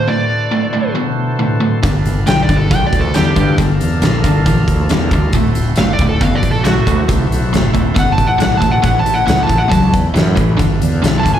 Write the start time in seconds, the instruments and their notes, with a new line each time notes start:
Already playing: tonewheel organ D3 E3 F#4 A4 C5
0.08 overdriven electric guitar D2 A2, electric slide guitar D5
0.51 overdriven electric guitar D2 A2
0.73 overdriven electric guitar D2 A2
0.95 overdriven electric guitar D2 B2
1.39 overdriven electric guitar D2 A2
1.60 overdriven electric guitar D2 A2
1.82 fretless electric bass G1, overdriven electric guitar G2 D3, tonewheel organ D4 A4 B4 F5, kick, closed hi-hat
2.06 fretless electric bass G1, closed hi-hat
2.27 fretless electric bass B1, overdriven electric guitar G2 D3, electric slide guitar G5, snare, closed hi-hat
2.42 electric slide guitar D5
2.49 fretless electric bass G1, overdriven electric guitar G2 D3, kick, closed hi-hat
2.56 electric slide guitar A4
2.71 fretless electric bass B1, overdriven electric guitar G2 E3, electric slide guitar G5, kick, closed hi-hat
2.87 electric slide guitar D5
2.93 fretless electric bass D2, kick, closed hi-hat
3.00 electric slide guitar A4
3.14 fretless electric bass E2, overdriven electric guitar G2 D3, electric slide guitar G4, snare, closed hi-hat
3.36 overdriven electric guitar G2 D3, fretless electric bass G2, kick, closed hi-hat
3.58 fretless electric bass G1, overdriven electric guitar G2 D3, tonewheel organ D4 A4 A#4 F5, kick, closed hi-hat
3.81 fretless electric bass E2, closed hi-hat
4.02 fretless electric bass A#1, overdriven electric guitar G2 D3, snare, closed hi-hat
4.24 fretless electric bass G1, overdriven electric guitar G2 D3, kick, closed hi-hat
4.46 fretless electric bass A#1, overdriven electric guitar G2 E3, kick, closed hi-hat
4.68 fretless electric bass D2, kick, closed hi-hat
4.89 fretless electric bass E2, overdriven electric guitar G2 D3, snare, closed hi-hat
5.11 fretless electric bass D2, overdriven electric guitar G2 D3, kick, closed hi-hat
5.33 fretless electric bass D1, overdriven electric guitar D2 A2, tonewheel organ E4 F#4 A4 C5, kick, closed hi-hat
5.55 fretless electric bass D1, closed hi-hat
5.76 fretless electric bass F#1, overdriven electric guitar D2 A2, electric slide guitar F5, snare, closed hi-hat
5.93 electric slide guitar D5
5.99 fretless electric bass D1, overdriven electric guitar D2 A2, kick, closed hi-hat
6.09 electric slide guitar A4
6.21 fretless electric bass F#1, overdriven electric guitar D2 B2, electric slide guitar F5, kick, closed hi-hat
6.35 electric slide guitar D5
6.43 fretless electric bass A1, kick, closed hi-hat
6.51 electric slide guitar A4
6.63 fretless electric bass B1, overdriven electric guitar D2 A2, electric slide guitar F#4, snare, closed hi-hat
6.87 fretless electric bass D2, overdriven electric guitar D2 A2, kick, closed hi-hat
7.08 fretless electric bass C2, overdriven electric guitar D2 A2, kick, closed hi-hat
7.31 fretless electric bass B1, closed hi-hat
7.53 fretless electric bass F#1, overdriven electric guitar D2 A2, snare, closed hi-hat
7.74 fretless electric bass D1, overdriven electric guitar D2 A2, kick, closed hi-hat
7.95 fretless electric bass F#1, overdriven electric guitar D2 B2, kick, closed hi-hat
7.99 electric slide guitar F#5
8.12 electric slide guitar A5
8.18 fretless electric bass A1, kick, closed hi-hat
8.27 electric slide guitar F#5
8.38 fretless electric bass B1, overdriven electric guitar D2 A2, electric slide guitar F#5, snare, closed hi-hat
8.57 overdriven electric guitar D2 A2, electric slide guitar A5
8.62 fretless electric bass A1, kick, closed hi-hat
8.71 electric slide guitar F#5
8.82 fretless electric bass A1, overdriven electric guitar A2 E3, tonewheel organ C#4 E4 B4 G5, electric slide guitar F#5, kick, closed hi-hat
8.99 electric slide guitar A5
9.06 fretless electric bass A1, closed hi-hat
9.14 electric slide guitar F#5
9.26 fretless electric bass C#2, overdriven electric guitar A2 E3, electric slide guitar F#5, closed hi-hat
9.30 snare
9.43 overdriven electric guitar A2, electric slide guitar A5
9.47 fretless electric bass A1, overdriven electric guitar E3, kick, closed hi-hat
9.58 electric slide guitar F#5
9.68 overdriven electric guitar A2 F#3, electric slide guitar A5, kick, closed hi-hat
9.72 fretless electric bass C#2
9.94 fretless electric bass E2, kick, closed hi-hat
10.14 fretless electric bass F#2, overdriven electric guitar A2 E3, snare, closed hi-hat
10.35 fretless electric bass A1, overdriven electric guitar A2 E3, kick, closed hi-hat
10.57 fretless electric bass G1, overdriven electric guitar G2 D3, tonewheel organ D4 A4 B4 F5, kick, closed hi-hat
10.82 fretless electric bass E2, closed hi-hat
11.02 fretless electric bass B1, overdriven electric guitar G2 D3, snare, closed hi-hat
11.20 overdriven electric guitar G2, electric slide guitar A5
11.24 fretless electric bass G1, overdriven electric guitar D3, kick, closed hi-hat
11.34 electric slide guitar G#5